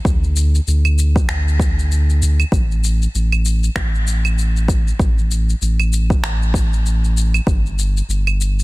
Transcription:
0.05 D2, kick, shaker
0.24 shaker
0.37 shaker
0.55 shaker
0.67 D2, shaker
0.85 claves, shaker
0.99 shaker
1.16 kick, shaker
1.29 D2, finger snap, shaker
1.48 shaker
1.60 kick, shaker
1.79 shaker
1.92 shaker
2.10 shaker
2.22 D2, shaker
2.40 claves, shaker
2.52 A1, kick, shaker
2.71 shaker
2.84 shaker
3.02 shaker
3.15 A1, shaker
3.32 claves, shaker
3.46 shaker
3.64 shaker
3.76 A1, finger snap, kick, shaker
3.95 shaker
4.08 shaker
4.25 claves, shaker
4.39 shaker
4.57 shaker
4.68 kick, shaker
4.88 shaker
4.99 A1, kick, shaker
5.18 shaker
5.31 shaker
5.49 shaker
5.62 A1, shaker
5.80 claves, shaker
5.93 shaker
6.10 kick, shaker
6.23 A1, finger snap, shaker
6.42 shaker
6.54 kick, shaker
6.73 shaker
6.86 shaker
7.04 shaker
7.17 shaker
7.34 claves, shaker
7.47 G1, kick, shaker
7.66 shaker
7.79 shaker
7.97 shaker
8.09 G1, shaker
8.27 claves, shaker
8.41 shaker
8.59 shaker

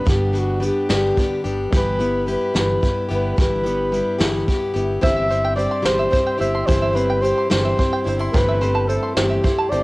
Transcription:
Already playing: B3
0.04 G1 G2 D3 G3 B3 D4 G4, kick, closed hi-hat
0.09 G4
0.32 G3 B3 D4 G4, closed hi-hat
0.38 F#4
0.60 G3 B3 D4 G4, closed hi-hat
0.65 G4
0.89 G1 G2 D3 G3 B3 D4 G4, snare, closed hi-hat
1.17 G3 B3 D4 G4, kick, closed hi-hat
1.44 G1 G3 B3 D4 G4, closed hi-hat
1.72 G1 G2 E3 G3 B3 E4 G4, kick, closed hi-hat
1.77 B4
1.99 G3 B3 E4 G4, closed hi-hat
2.27 G3 B3 E4 G4, closed hi-hat
2.31 B4
2.54 G1 G2 E3 G3 B3 E4 G4, snare, closed hi-hat
2.59 B4
2.81 G3 B3 E4 G4, kick, closed hi-hat
3.09 G1 G3 B3 E4 G4, closed hi-hat
3.14 B4
3.36 G1 G2 E3 G3 B3 E4 G4, kick, closed hi-hat
3.41 B4
3.64 G3 B3 E4 G4, closed hi-hat
3.92 G3 B3 E4 G4, closed hi-hat
4.19 G1 G2 E3 G3 B3 E4 G4, snare, closed hi-hat
4.47 G3 B3 E4 G4, kick, closed hi-hat
4.74 G1 G3 B3 E4 G4, closed hi-hat
5.01 G1 G2 E3 G3 C4 E4 G4 C5 E5, kick, closed hi-hat
5.16 E5
5.28 G3 C4 E4 G4 C5, closed hi-hat
5.45 G5
5.56 G3 C4 E4 G4 C5 D5, closed hi-hat
5.71 C6
5.82 G1 G2 E3 G3 C4 E4 G4 C5, snare, closed hi-hat
5.99 E5
6.10 G3 C4 E4 G4 C5, kick, closed hi-hat
6.27 G5
6.38 G1 G3 C4 E4 G4 C5 E5, closed hi-hat
6.55 C6
6.67 G1 G2 E3 G3 C4 E4 G4 C5, kick, closed hi-hat
6.82 E5
6.93 G3 C4 E4 G4 B4 C5, closed hi-hat
7.10 G5
7.21 G3 C4 E4 G4 C5, closed hi-hat
7.38 C6
7.50 G1 G2 E3 G3 C4 E4 G4 C5, snare, closed hi-hat
7.65 E5
7.76 G3 C4 E4 G4 C5, kick, closed hi-hat
7.93 G5
8.04 G1 G3 C4 D4 E4 G4, closed hi-hat
8.08 C5
8.19 E4 C6
8.32 G1 G2 E3 A3 C4 E4 G4 A4 B4, kick, closed hi-hat
8.49 E5
8.61 A3 C4 E4 G4 C5, closed hi-hat
8.75 A5
8.88 A3 C4 E4 G4 A4 C5, closed hi-hat
9.03 C6
9.15 G1 G2 E3 A3 C4 E4 G4 C5, snare, closed hi-hat
9.30 E5
9.42 A3 C4 E4 G4 C5, kick, closed hi-hat
9.58 A5
9.70 G1 A3 C4 E4 G4 C5 D5, closed hi-hat

